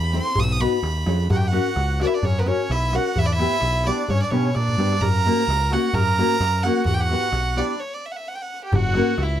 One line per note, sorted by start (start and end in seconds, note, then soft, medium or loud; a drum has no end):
0.00 0.19 E2 medium
0.00 0.17 B5 medium
0.00 darbuka tek soft
0.13 0.30 C4 medium
0.13 0.30 E4 medium
0.13 0.30 A4 soft
0.13 0.30 C5 medium
0.13 0.41 C6 loud
0.26 darbuka tek soft
0.36 0.66 B1 loud
0.36 0.45 D#6 loud
0.36 darbuka dum medium
0.44 0.53 E6 medium
0.50 0.62 D#6 loud
0.50 darbuka tek soft
0.60 0.76 B3 medium
0.60 0.77 D#4 medium
0.60 0.77 F#4 medium
0.60 0.77 B4 medium
0.60 1.31 B5 medium
0.74 darbuka tek soft
0.83 1.04 D#2 medium
0.83 darbuka tek medium
0.98 darbuka tek soft
1.06 1.28 F2 loud
1.06 1.22 C#4 medium
1.06 1.23 F4 medium
1.06 1.23 G#4 medium
1.06 1.23 C#5 medium
1.06 darbuka tek medium
1.20 darbuka tek soft
1.30 1.58 F#2 loud
1.30 1.39 F#4 medium
1.30 1.38 F#5 medium
1.30 darbuka dum medium
1.37 1.46 G4 medium
1.37 1.49 G5 medium
1.47 2.02 F#4 medium
1.47 2.01 F#5 loud
1.52 1.69 C#4 medium
1.52 1.69 F#4 medium
1.52 1.69 A#4 soft
1.52 1.70 C#5 medium
1.52 darbuka tek medium
1.67 darbuka tek soft
1.76 2.04 C#2 medium
1.76 darbuka tek medium
2.00 2.16 C#4 medium
2.00 2.16 F#4 medium
2.00 2.17 A#4 soft
2.00 2.17 C#5 soft
2.00 2.08 D5 medium
2.00 darbuka tek medium
2.05 2.08 D4 medium
2.05 2.13 E4 medium
2.05 2.16 E5 medium
2.15 2.25 D4 medium
2.15 2.26 D5 medium
2.23 2.51 F#2 loud
2.23 2.37 C#4 medium
2.23 2.41 C#5 loud
2.23 darbuka dum medium
2.38 2.41 A#3 soft
2.38 2.46 B3 medium
2.38 2.41 A#4 medium
2.38 2.44 B4 medium
2.44 2.62 C#4 medium
2.44 2.70 C#4 medium
2.44 2.62 F#4 medium
2.44 2.62 A#4 medium
2.44 2.49 B4 medium
2.44 2.63 C#5 medium
2.44 2.73 C#5 medium
2.44 darbuka tek medium
2.60 darbuka tek soft
2.70 2.97 B1 medium
2.70 2.94 E4 medium
2.70 2.97 E5 loud
2.70 darbuka tek medium
2.92 3.08 C#4 medium
2.92 3.08 F#4 medium
2.92 3.16 F#4 medium
2.92 3.09 A#4 soft
2.92 3.09 C#5 medium
2.92 3.20 F#5 medium
2.92 darbuka tek medium
3.16 3.44 E2 loud
3.16 3.27 E5 loud
3.16 darbuka dum medium
3.21 3.26 E4 medium
3.25 3.32 D4 medium
3.25 3.34 D5 medium
3.33 3.87 E4 medium
3.33 3.88 E5 loud
3.39 3.55 B3 medium
3.39 3.55 E4 medium
3.39 3.56 G4 medium
3.39 3.56 B4 medium
3.39 darbuka tek medium
3.61 3.90 B1 medium
3.61 darbuka tek medium
3.84 4.02 B3 soft
3.84 4.02 E4 medium
3.84 4.02 G4 medium
3.84 4.11 D5 medium
3.84 darbuka tek medium
3.88 4.11 D4 medium
3.88 4.03 B4 medium
4.08 4.23 G2 loud
4.08 4.23 C#4 medium
4.08 4.22 C#5 loud
4.08 darbuka dum medium
4.22 4.33 D4 medium
4.22 4.33 D5 medium
4.22 darbuka tek soft
4.31 4.53 B2 medium
4.31 4.47 B3 medium
4.31 4.57 C#4 medium
4.31 4.48 D4 medium
4.31 4.48 G4 soft
4.31 4.48 B4 medium
4.31 4.57 C#5 medium
4.31 darbuka tek medium
4.55 4.77 A#2 medium
4.55 5.03 D4 medium
4.55 5.03 D5 loud
4.55 darbuka tek medium
4.69 darbuka dum soft
4.78 4.99 G2 medium
4.78 4.94 B3 soft
4.78 4.94 D4 soft
4.78 4.95 G4 medium
4.78 4.95 B4 medium
4.78 darbuka tek medium
4.92 darbuka tek medium
5.01 5.29 F#2 loud
5.01 5.71 A#4 medium
5.01 5.75 A#5 loud
5.01 darbuka dum medium
5.26 5.41 A#3 medium
5.26 5.41 C#4 medium
5.26 5.41 F#4 medium
5.26 5.42 A#4 medium
5.26 darbuka tek medium
5.40 darbuka tek soft
5.48 5.76 C#2 medium
5.48 darbuka tek medium
5.71 5.87 A#3 soft
5.71 5.87 C#4 soft
5.71 5.94 F#4 loud
5.71 5.88 F#4 soft
5.71 5.88 A#4 medium
5.71 5.97 F#5 loud
5.71 darbuka tek medium
5.93 6.22 F#2 loud
5.93 6.64 A#4 loud
5.93 6.64 A#5 loud
5.93 darbuka dum medium
6.18 6.34 A#3 medium
6.18 6.34 C#4 medium
6.18 6.34 F#4 medium
6.18 6.34 A#4 medium
6.18 darbuka tek medium
6.31 darbuka tek soft
6.40 6.68 F#2 loud
6.40 darbuka tek medium
6.63 6.80 A#3 medium
6.63 6.80 C#4 soft
6.63 6.85 F#4 medium
6.63 6.81 F#4 soft
6.63 6.81 A#4 medium
6.63 6.85 F#5 medium
6.63 darbuka tek medium
6.85 7.14 E2 loud
6.85 6.94 F#4 medium
6.85 6.95 F#5 medium
6.85 darbuka dum medium
6.94 7.03 G4 medium
6.94 7.02 G5 loud
7.00 7.58 F#4 medium
7.00 7.59 F#5 loud
7.09 7.26 B3 medium
7.09 7.27 E4 soft
7.09 7.27 G4 medium
7.09 7.27 B4 medium
7.09 darbuka tek soft
7.23 darbuka tek soft
7.32 7.61 B1 medium
7.32 darbuka tek medium
7.56 7.73 B3 medium
7.56 7.81 D4 medium
7.56 7.73 E4 soft
7.56 7.73 G4 medium
7.56 7.73 B4 medium
7.56 7.81 D5 medium
7.56 darbuka tek medium
7.80 7.96 C#5 medium
7.94 8.07 D5 medium
8.06 8.13 E5 medium
8.12 8.18 F#5 medium
8.16 8.29 E5 medium
8.28 8.36 F#5 medium
8.35 8.44 G5 medium
8.42 8.63 F#5 medium
8.65 8.77 G4 medium
8.65 8.72 G5 medium
8.72 9.00 F#1 loud
8.72 9.25 F#4 loud
8.72 9.21 F#5 medium
8.72 darbuka dum loud
8.94 9.11 A#3 medium
8.94 9.12 C#4 medium
8.94 9.12 F#4 medium
8.94 9.12 A#4 medium
8.94 darbuka tek medium
9.18 9.40 C#2 loud
9.18 9.40 E5 medium
9.18 darbuka tek medium
9.23 9.40 E4 medium